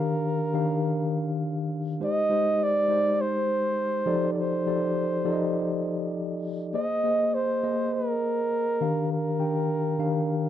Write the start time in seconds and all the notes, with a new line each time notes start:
Already playing: D#3 D4 G4 A#4 F5
0.54 D#3 D4 G4 F5
2.00 G#3 D#4 G4 C5 D#5
2.30 G#3 D#4 G4 C5
2.63 D5
2.88 G#3 D#4 G4 C5
3.21 C5
4.06 F3 D#4 G4 A4 D5
4.33 D5
4.39 C5
4.67 F3 D#4 G4 A4 D5
5.24 F3 D#4 G4 A4 D5
5.32 D#5
6.73 A#3 G#4 C5 D#5
7.04 A#3 G#4 C5 D#5
7.34 C5
7.63 A#3 G#4 C5 D#5
7.94 A#4
8.81 D#3 D4 G4 F5
9.12 A#4
9.39 D#3 D4 G4 G5
9.98 D#3 D4 G4 F5